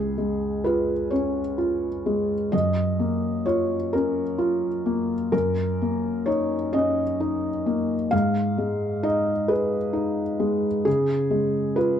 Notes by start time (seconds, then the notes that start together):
Already playing: C#2 G#4
0.18 G#3
0.64 F4 B4
1.11 C#4 C#5
1.58 F4
2.06 G#3
2.52 F#2 D#5
2.99 A#3
3.46 F4 C#5
3.93 C#4 A#4
4.38 F4
4.86 A#3
5.32 F#2 A#4
5.82 A#3
6.26 D#4 C#5
6.73 C#4 D#5
7.20 D#4
7.66 A#3
8.11 G#2 F5
8.58 G#3
9.03 D#4 D#5
9.48 G#4 B4
9.93 D#4
10.40 G#3
10.85 C#3 G#4
11.31 G#3
11.76 F4 B4